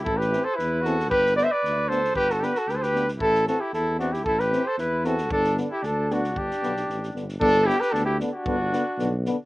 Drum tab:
SD |-oo-o-oo|-oo-o-oo|-ooooooo|-oo-o-oo|
BD |o-------|o-------|o-------|o-------|

SD |-oo-o-oo|-oo-o-oo|-ooooooo|--ooo-o-|
BD |o-------|o-------|o-------|o-------|

SD |--o-o-o-|
BD |o-------|